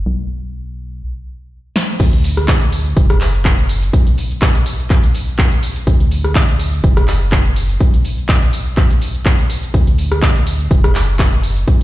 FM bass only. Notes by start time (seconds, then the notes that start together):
0.06 B1
2.00 D2
2.97 F#1
3.93 B1
5.87 D2
6.84 F#1
7.80 B1
9.74 D2
10.71 F#1
11.68 B1